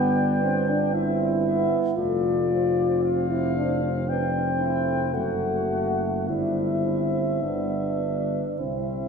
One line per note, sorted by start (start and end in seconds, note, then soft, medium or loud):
0.00 1.66 G1 medium
0.00 0.43 B3 medium
0.00 0.94 D4 medium
0.00 0.93 B4 medium
0.00 0.96 G5 medium
0.44 0.71 C4 medium
0.69 0.94 D4 medium
0.94 1.46 C4 medium
0.94 1.98 E4 medium
0.94 1.30 E5 medium
1.45 1.97 B3 medium
1.45 1.78 E5 medium
1.96 5.15 F1 medium
1.96 2.49 A3 medium
1.96 3.29 F4 medium
1.96 2.49 A4 medium
1.96 2.99 D5 medium
2.50 4.09 C4 medium
2.50 4.08 C5 medium
3.04 4.10 F5 soft
3.30 3.55 E4 medium
3.57 3.90 D4 medium
4.08 5.15 C4 medium
4.08 4.60 D4 medium
4.08 4.45 B4 soft
4.08 5.15 G5 soft
4.60 5.13 E4 medium
4.60 6.25 A4 soft
5.13 6.29 F#1 soft
5.13 6.30 A3 medium
5.13 6.12 F#4 medium
5.13 6.27 F#5 soft
6.28 7.42 G1 soft
6.28 6.84 D4 soft
6.28 7.45 E4 medium
6.28 7.41 C5 soft
6.28 8.43 E5 soft
6.86 7.43 C4 soft
7.43 8.43 G1 soft
7.43 8.01 B3 soft
7.43 8.59 D4 medium
7.43 8.58 B4 soft
8.00 8.60 D4 soft
8.59 9.08 C2 soft
8.59 9.08 C4 medium
8.59 9.08 E4 soft
8.59 9.08 C5 soft
8.59 9.08 E5 soft